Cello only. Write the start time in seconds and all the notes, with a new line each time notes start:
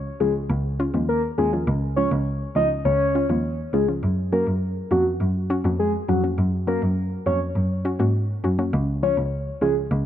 0.21 C#2
0.50 C#2
0.94 D#2
1.38 D#2
1.68 C#2
2.12 C#2
2.56 C#2
2.85 C#2
3.29 D#2
3.73 C#2
4.03 F#2
4.47 F#2
4.91 F2
5.21 F#2
5.65 F2
6.09 F2
6.38 F#2
6.82 F#2
7.26 F2
7.56 F#2
8.00 G#2
8.44 F#2
8.73 C#2
9.17 C#2
9.62 C#2
9.91 C#2